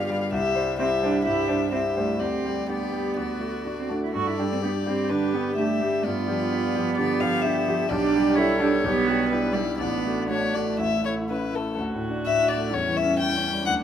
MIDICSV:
0, 0, Header, 1, 5, 480
1, 0, Start_track
1, 0, Key_signature, 1, "major"
1, 0, Tempo, 462250
1, 342, Time_signature, 4, 2, 24, 8
1, 1781, Tempo, 481928
1, 5621, Tempo, 466926
1, 8023, Key_signature, 2, "major"
1, 9461, Tempo, 493827
1, 11861, Tempo, 473934
1, 13947, End_track
2, 0, Start_track
2, 0, Title_t, "Violin"
2, 0, Program_c, 0, 40
2, 0, Note_on_c, 0, 77, 54
2, 294, Note_off_c, 0, 77, 0
2, 350, Note_on_c, 0, 76, 54
2, 794, Note_off_c, 0, 76, 0
2, 831, Note_on_c, 0, 76, 46
2, 1290, Note_off_c, 0, 76, 0
2, 1297, Note_on_c, 0, 76, 41
2, 1771, Note_off_c, 0, 76, 0
2, 1786, Note_on_c, 0, 76, 35
2, 2260, Note_on_c, 0, 74, 34
2, 2275, Note_off_c, 0, 76, 0
2, 2744, Note_off_c, 0, 74, 0
2, 2763, Note_on_c, 0, 74, 36
2, 3225, Note_off_c, 0, 74, 0
2, 3232, Note_on_c, 0, 74, 36
2, 3977, Note_off_c, 0, 74, 0
2, 4181, Note_on_c, 0, 74, 40
2, 5144, Note_on_c, 0, 71, 39
2, 5159, Note_off_c, 0, 74, 0
2, 5609, Note_off_c, 0, 71, 0
2, 5615, Note_on_c, 0, 76, 39
2, 6092, Note_on_c, 0, 74, 41
2, 6108, Note_off_c, 0, 76, 0
2, 7039, Note_off_c, 0, 74, 0
2, 7046, Note_on_c, 0, 74, 50
2, 7293, Note_on_c, 0, 77, 52
2, 7308, Note_off_c, 0, 74, 0
2, 7520, Note_on_c, 0, 76, 48
2, 7535, Note_off_c, 0, 77, 0
2, 8005, Note_on_c, 0, 74, 50
2, 8020, Note_off_c, 0, 76, 0
2, 8478, Note_on_c, 0, 73, 50
2, 8493, Note_off_c, 0, 74, 0
2, 9440, Note_off_c, 0, 73, 0
2, 9446, Note_on_c, 0, 71, 48
2, 9679, Note_on_c, 0, 74, 48
2, 9694, Note_off_c, 0, 71, 0
2, 9918, Note_off_c, 0, 74, 0
2, 9924, Note_on_c, 0, 74, 42
2, 10354, Note_off_c, 0, 74, 0
2, 10421, Note_on_c, 0, 73, 55
2, 10664, Note_on_c, 0, 74, 42
2, 10679, Note_off_c, 0, 73, 0
2, 10903, Note_off_c, 0, 74, 0
2, 10914, Note_on_c, 0, 76, 52
2, 11143, Note_off_c, 0, 76, 0
2, 11160, Note_on_c, 0, 73, 41
2, 11238, Note_off_c, 0, 73, 0
2, 11395, Note_on_c, 0, 71, 42
2, 11643, Note_on_c, 0, 69, 36
2, 11658, Note_off_c, 0, 71, 0
2, 11871, Note_off_c, 0, 69, 0
2, 12354, Note_on_c, 0, 76, 65
2, 12579, Note_on_c, 0, 74, 49
2, 12594, Note_off_c, 0, 76, 0
2, 12832, Note_on_c, 0, 73, 54
2, 12847, Note_off_c, 0, 74, 0
2, 13069, Note_on_c, 0, 76, 58
2, 13084, Note_off_c, 0, 73, 0
2, 13295, Note_off_c, 0, 76, 0
2, 13301, Note_on_c, 0, 79, 56
2, 13762, Note_off_c, 0, 79, 0
2, 13768, Note_on_c, 0, 78, 60
2, 13849, Note_off_c, 0, 78, 0
2, 13947, End_track
3, 0, Start_track
3, 0, Title_t, "Viola"
3, 0, Program_c, 1, 41
3, 0, Note_on_c, 1, 67, 39
3, 297, Note_off_c, 1, 67, 0
3, 332, Note_on_c, 1, 67, 48
3, 784, Note_off_c, 1, 67, 0
3, 822, Note_on_c, 1, 67, 48
3, 1288, Note_off_c, 1, 67, 0
3, 1299, Note_on_c, 1, 67, 47
3, 1772, Note_off_c, 1, 67, 0
3, 1785, Note_on_c, 1, 67, 41
3, 2247, Note_off_c, 1, 67, 0
3, 2253, Note_on_c, 1, 67, 31
3, 2731, Note_off_c, 1, 67, 0
3, 2740, Note_on_c, 1, 67, 32
3, 3224, Note_on_c, 1, 66, 33
3, 3239, Note_off_c, 1, 67, 0
3, 3987, Note_off_c, 1, 66, 0
3, 4191, Note_on_c, 1, 69, 36
3, 4674, Note_on_c, 1, 67, 42
3, 4689, Note_off_c, 1, 69, 0
3, 6109, Note_on_c, 1, 65, 42
3, 6125, Note_off_c, 1, 67, 0
3, 7064, Note_on_c, 1, 67, 49
3, 7080, Note_off_c, 1, 65, 0
3, 8012, Note_off_c, 1, 67, 0
3, 8018, Note_on_c, 1, 67, 48
3, 8502, Note_on_c, 1, 69, 54
3, 8517, Note_off_c, 1, 67, 0
3, 8981, Note_on_c, 1, 67, 55
3, 8996, Note_off_c, 1, 69, 0
3, 9220, Note_on_c, 1, 66, 49
3, 9235, Note_off_c, 1, 67, 0
3, 9465, Note_on_c, 1, 64, 45
3, 9479, Note_off_c, 1, 66, 0
3, 9940, Note_on_c, 1, 62, 42
3, 9955, Note_off_c, 1, 64, 0
3, 10905, Note_on_c, 1, 64, 35
3, 10919, Note_off_c, 1, 62, 0
3, 11664, Note_off_c, 1, 64, 0
3, 11854, Note_on_c, 1, 66, 38
3, 12807, Note_on_c, 1, 61, 38
3, 12823, Note_off_c, 1, 66, 0
3, 13770, Note_off_c, 1, 61, 0
3, 13776, Note_on_c, 1, 62, 43
3, 13947, Note_off_c, 1, 62, 0
3, 13947, End_track
4, 0, Start_track
4, 0, Title_t, "Grand piano"
4, 0, Program_c, 2, 0
4, 0, Control_c, 2, 64, 127
4, 0, Note_on_c, 2, 43, 53
4, 0, Note_on_c, 2, 50, 41
4, 0, Note_on_c, 2, 55, 39
4, 0, Note_on_c, 2, 65, 40
4, 0, Note_on_c, 2, 74, 46
4, 95, Note_off_c, 2, 55, 0
4, 95, Note_on_c, 2, 55, 41
4, 101, Note_off_c, 2, 74, 0
4, 101, Note_on_c, 2, 74, 44
4, 314, Note_off_c, 2, 55, 0
4, 317, Note_off_c, 2, 74, 0
4, 333, Note_on_c, 2, 36, 53
4, 362, Control_c, 2, 64, 0
4, 368, Note_off_c, 2, 50, 0
4, 371, Note_off_c, 2, 43, 0
4, 371, Note_off_c, 2, 65, 0
4, 510, Control_c, 2, 64, 127
4, 570, Note_on_c, 2, 55, 40
4, 575, Note_on_c, 2, 72, 39
4, 792, Note_off_c, 2, 55, 0
4, 794, Note_off_c, 2, 72, 0
4, 819, Note_on_c, 2, 64, 36
4, 825, Note_on_c, 2, 72, 39
4, 1034, Note_off_c, 2, 64, 0
4, 1037, Note_off_c, 2, 72, 0
4, 1066, Note_on_c, 2, 55, 36
4, 1069, Note_on_c, 2, 72, 38
4, 1265, Note_off_c, 2, 36, 0
4, 1277, Note_off_c, 2, 55, 0
4, 1279, Note_off_c, 2, 72, 0
4, 1315, Note_on_c, 2, 43, 38
4, 1544, Note_on_c, 2, 55, 31
4, 1547, Note_on_c, 2, 72, 32
4, 1692, Note_off_c, 2, 43, 0
4, 1760, Note_off_c, 2, 55, 0
4, 1762, Note_off_c, 2, 72, 0
4, 1783, Note_on_c, 2, 72, 35
4, 1784, Note_on_c, 2, 64, 31
4, 1995, Note_off_c, 2, 72, 0
4, 1996, Note_off_c, 2, 64, 0
4, 2028, Note_on_c, 2, 55, 26
4, 2029, Note_on_c, 2, 72, 31
4, 2241, Note_off_c, 2, 55, 0
4, 2241, Note_off_c, 2, 72, 0
4, 2257, Note_on_c, 2, 38, 36
4, 2279, Control_c, 2, 64, 0
4, 2451, Control_c, 2, 64, 127
4, 2512, Note_on_c, 2, 67, 30
4, 2516, Note_on_c, 2, 55, 27
4, 2725, Note_off_c, 2, 67, 0
4, 2727, Note_off_c, 2, 55, 0
4, 2744, Note_on_c, 2, 62, 26
4, 2744, Note_on_c, 2, 67, 27
4, 2960, Note_off_c, 2, 62, 0
4, 2960, Note_off_c, 2, 67, 0
4, 2982, Note_on_c, 2, 55, 28
4, 2991, Note_on_c, 2, 67, 30
4, 3194, Note_off_c, 2, 38, 0
4, 3199, Note_off_c, 2, 55, 0
4, 3204, Note_off_c, 2, 67, 0
4, 3221, Note_on_c, 2, 38, 37
4, 3244, Control_c, 2, 64, 0
4, 3379, Control_c, 2, 64, 127
4, 3458, Note_on_c, 2, 57, 24
4, 3465, Note_on_c, 2, 66, 27
4, 3679, Note_off_c, 2, 57, 0
4, 3683, Note_off_c, 2, 66, 0
4, 3705, Note_on_c, 2, 62, 25
4, 3715, Note_on_c, 2, 66, 26
4, 3924, Note_off_c, 2, 62, 0
4, 3929, Note_off_c, 2, 66, 0
4, 3959, Note_on_c, 2, 57, 24
4, 3966, Note_on_c, 2, 66, 29
4, 4160, Note_off_c, 2, 38, 0
4, 4172, Note_off_c, 2, 57, 0
4, 4176, Note_off_c, 2, 66, 0
4, 4198, Note_on_c, 2, 43, 41
4, 4211, Control_c, 2, 64, 0
4, 4372, Control_c, 2, 64, 127
4, 4446, Note_on_c, 2, 55, 30
4, 4449, Note_on_c, 2, 67, 36
4, 4655, Note_off_c, 2, 55, 0
4, 4657, Note_off_c, 2, 67, 0
4, 4679, Note_on_c, 2, 62, 30
4, 4685, Note_on_c, 2, 67, 36
4, 4890, Note_off_c, 2, 62, 0
4, 4893, Note_off_c, 2, 67, 0
4, 4915, Note_on_c, 2, 55, 29
4, 4919, Note_on_c, 2, 67, 34
4, 5123, Note_off_c, 2, 43, 0
4, 5126, Note_off_c, 2, 55, 0
4, 5129, Note_off_c, 2, 67, 0
4, 5152, Note_on_c, 2, 50, 33
4, 5393, Note_on_c, 2, 55, 28
4, 5394, Note_on_c, 2, 67, 33
4, 5527, Note_off_c, 2, 50, 0
4, 5601, Note_off_c, 2, 55, 0
4, 5601, Note_off_c, 2, 67, 0
4, 5629, Note_on_c, 2, 62, 30
4, 5634, Note_on_c, 2, 67, 35
4, 5843, Note_off_c, 2, 62, 0
4, 5845, Note_off_c, 2, 67, 0
4, 5873, Note_on_c, 2, 55, 32
4, 5881, Note_on_c, 2, 67, 34
4, 6086, Note_off_c, 2, 55, 0
4, 6090, Note_off_c, 2, 67, 0
4, 6123, Control_c, 2, 64, 0
4, 6126, Note_on_c, 2, 43, 46
4, 6264, Control_c, 2, 64, 127
4, 6349, Note_on_c, 2, 53, 34
4, 6351, Note_on_c, 2, 67, 37
4, 6565, Note_off_c, 2, 53, 0
4, 6566, Note_off_c, 2, 67, 0
4, 6586, Note_on_c, 2, 62, 34
4, 6596, Note_on_c, 2, 67, 36
4, 6803, Note_off_c, 2, 62, 0
4, 6809, Note_off_c, 2, 67, 0
4, 6835, Note_on_c, 2, 53, 35
4, 6836, Note_on_c, 2, 67, 37
4, 7047, Note_off_c, 2, 53, 0
4, 7048, Note_off_c, 2, 67, 0
4, 7050, Note_off_c, 2, 43, 0
4, 7072, Note_on_c, 2, 50, 41
4, 7308, Note_on_c, 2, 53, 36
4, 7310, Note_on_c, 2, 67, 37
4, 7451, Note_off_c, 2, 50, 0
4, 7522, Note_off_c, 2, 53, 0
4, 7523, Note_off_c, 2, 67, 0
4, 7554, Note_on_c, 2, 62, 37
4, 7557, Note_on_c, 2, 67, 43
4, 7765, Note_off_c, 2, 62, 0
4, 7766, Note_off_c, 2, 67, 0
4, 7789, Note_on_c, 2, 53, 39
4, 7794, Note_on_c, 2, 67, 42
4, 8002, Note_off_c, 2, 53, 0
4, 8005, Note_off_c, 2, 67, 0
4, 8017, Note_on_c, 2, 35, 59
4, 8044, Control_c, 2, 64, 0
4, 8189, Control_c, 2, 64, 127
4, 8272, Note_on_c, 2, 55, 43
4, 8282, Note_on_c, 2, 67, 46
4, 8481, Note_off_c, 2, 55, 0
4, 8487, Note_off_c, 2, 67, 0
4, 8521, Note_on_c, 2, 62, 41
4, 8525, Note_on_c, 2, 67, 44
4, 8726, Note_off_c, 2, 62, 0
4, 8728, Note_off_c, 2, 67, 0
4, 8745, Note_on_c, 2, 55, 46
4, 8753, Note_on_c, 2, 67, 45
4, 8946, Note_off_c, 2, 35, 0
4, 8958, Note_off_c, 2, 55, 0
4, 8962, Note_off_c, 2, 67, 0
4, 8983, Note_on_c, 2, 35, 53
4, 9243, Note_on_c, 2, 67, 41
4, 9244, Note_on_c, 2, 55, 40
4, 9450, Note_off_c, 2, 55, 0
4, 9450, Note_off_c, 2, 67, 0
4, 9472, Note_on_c, 2, 62, 39
4, 9474, Note_on_c, 2, 67, 44
4, 9677, Note_off_c, 2, 62, 0
4, 9678, Note_off_c, 2, 67, 0
4, 9696, Note_on_c, 2, 55, 34
4, 9704, Note_on_c, 2, 67, 37
4, 9907, Note_off_c, 2, 35, 0
4, 9910, Note_off_c, 2, 55, 0
4, 9914, Note_off_c, 2, 67, 0
4, 9944, Note_on_c, 2, 33, 44
4, 9951, Control_c, 2, 64, 0
4, 10099, Control_c, 2, 64, 127
4, 10186, Note_on_c, 2, 57, 33
4, 10191, Note_on_c, 2, 66, 32
4, 10398, Note_off_c, 2, 57, 0
4, 10400, Note_off_c, 2, 66, 0
4, 10422, Note_on_c, 2, 62, 32
4, 10425, Note_on_c, 2, 66, 35
4, 10637, Note_off_c, 2, 62, 0
4, 10638, Note_off_c, 2, 66, 0
4, 10667, Note_on_c, 2, 57, 30
4, 10669, Note_on_c, 2, 66, 35
4, 10876, Note_off_c, 2, 33, 0
4, 10880, Note_off_c, 2, 57, 0
4, 10882, Note_off_c, 2, 66, 0
4, 10900, Note_on_c, 2, 33, 37
4, 10918, Control_c, 2, 64, 0
4, 11094, Control_c, 2, 64, 127
4, 11130, Note_on_c, 2, 57, 27
4, 11138, Note_on_c, 2, 64, 30
4, 11351, Note_off_c, 2, 57, 0
4, 11356, Note_off_c, 2, 64, 0
4, 11391, Note_on_c, 2, 61, 28
4, 11394, Note_on_c, 2, 64, 31
4, 11602, Note_off_c, 2, 64, 0
4, 11604, Note_off_c, 2, 61, 0
4, 11616, Note_on_c, 2, 57, 27
4, 11617, Note_on_c, 2, 64, 31
4, 11832, Note_off_c, 2, 33, 0
4, 11833, Note_off_c, 2, 57, 0
4, 11834, Note_off_c, 2, 64, 0
4, 11857, Note_on_c, 2, 38, 38
4, 11881, Control_c, 2, 64, 0
4, 12030, Note_on_c, 2, 45, 33
4, 12066, Control_c, 2, 64, 127
4, 12181, Note_on_c, 2, 62, 34
4, 12282, Note_off_c, 2, 45, 0
4, 12352, Note_on_c, 2, 45, 32
4, 12436, Note_off_c, 2, 62, 0
4, 12507, Note_on_c, 2, 62, 30
4, 12601, Note_off_c, 2, 45, 0
4, 12665, Note_on_c, 2, 57, 35
4, 12759, Note_off_c, 2, 62, 0
4, 12790, Note_off_c, 2, 38, 0
4, 12822, Note_on_c, 2, 40, 42
4, 12824, Note_off_c, 2, 57, 0
4, 12840, Control_c, 2, 64, 0
4, 12986, Control_c, 2, 64, 127
4, 12987, Note_on_c, 2, 52, 31
4, 13147, Note_on_c, 2, 61, 32
4, 13243, Note_off_c, 2, 52, 0
4, 13303, Note_on_c, 2, 52, 31
4, 13401, Note_off_c, 2, 61, 0
4, 13468, Note_on_c, 2, 61, 37
4, 13558, Note_off_c, 2, 52, 0
4, 13632, Note_on_c, 2, 55, 30
4, 13720, Note_off_c, 2, 61, 0
4, 13753, Note_off_c, 2, 40, 0
4, 13784, Note_on_c, 2, 38, 43
4, 13786, Note_off_c, 2, 55, 0
4, 13802, Control_c, 2, 64, 0
4, 13947, Note_off_c, 2, 38, 0
4, 13947, End_track
5, 0, Start_track
5, 0, Title_t, "Cello"
5, 0, Program_c, 3, 42
5, 0, Note_on_c, 3, 59, 83
5, 306, Note_off_c, 3, 59, 0
5, 816, Note_on_c, 3, 60, 62
5, 899, Note_off_c, 3, 60, 0
5, 1056, Note_on_c, 3, 62, 64
5, 1281, Note_off_c, 3, 62, 0
5, 1287, Note_on_c, 3, 64, 61
5, 1531, Note_on_c, 3, 62, 52
5, 1546, Note_off_c, 3, 64, 0
5, 1769, Note_off_c, 3, 62, 0
5, 1775, Note_on_c, 3, 60, 56
5, 1855, Note_off_c, 3, 60, 0
5, 2018, Note_on_c, 3, 57, 48
5, 2251, Note_on_c, 3, 60, 50
5, 2266, Note_off_c, 3, 57, 0
5, 2741, Note_on_c, 3, 59, 42
5, 2756, Note_off_c, 3, 60, 0
5, 3706, Note_off_c, 3, 59, 0
5, 3832, Note_on_c, 3, 60, 42
5, 3949, Note_on_c, 3, 62, 43
5, 3964, Note_off_c, 3, 60, 0
5, 4070, Note_off_c, 3, 62, 0
5, 4091, Note_on_c, 3, 64, 46
5, 4135, Note_off_c, 3, 64, 0
5, 4195, Note_on_c, 3, 66, 67
5, 4327, Note_on_c, 3, 64, 53
5, 4342, Note_off_c, 3, 66, 0
5, 4431, Note_off_c, 3, 64, 0
5, 4437, Note_on_c, 3, 62, 58
5, 4484, Note_off_c, 3, 62, 0
5, 4576, Note_on_c, 3, 60, 56
5, 4619, Note_off_c, 3, 60, 0
5, 4687, Note_on_c, 3, 59, 50
5, 4766, Note_off_c, 3, 59, 0
5, 4917, Note_on_c, 3, 60, 55
5, 5153, Note_on_c, 3, 62, 57
5, 5168, Note_off_c, 3, 60, 0
5, 5386, Note_on_c, 3, 59, 58
5, 5401, Note_off_c, 3, 62, 0
5, 5611, Note_off_c, 3, 59, 0
5, 5617, Note_on_c, 3, 57, 64
5, 5856, Note_on_c, 3, 55, 50
5, 5872, Note_off_c, 3, 57, 0
5, 6096, Note_on_c, 3, 59, 69
5, 6112, Note_off_c, 3, 55, 0
5, 8012, Note_off_c, 3, 59, 0
5, 8018, Note_on_c, 3, 62, 83
5, 8495, Note_on_c, 3, 64, 78
5, 8511, Note_off_c, 3, 62, 0
5, 8724, Note_off_c, 3, 64, 0
5, 8730, Note_on_c, 3, 62, 76
5, 8812, Note_off_c, 3, 62, 0
5, 8960, Note_on_c, 3, 59, 82
5, 9671, Note_off_c, 3, 59, 0
5, 9676, Note_on_c, 3, 55, 50
5, 9754, Note_off_c, 3, 55, 0
5, 9901, Note_on_c, 3, 59, 65
5, 10398, Note_on_c, 3, 57, 49
5, 10413, Note_off_c, 3, 59, 0
5, 11373, Note_off_c, 3, 57, 0
5, 11848, Note_on_c, 3, 57, 42
5, 12804, Note_on_c, 3, 55, 45
5, 12819, Note_off_c, 3, 57, 0
5, 13759, Note_off_c, 3, 55, 0
5, 13765, Note_on_c, 3, 54, 48
5, 13947, Note_off_c, 3, 54, 0
5, 13947, End_track
0, 0, End_of_file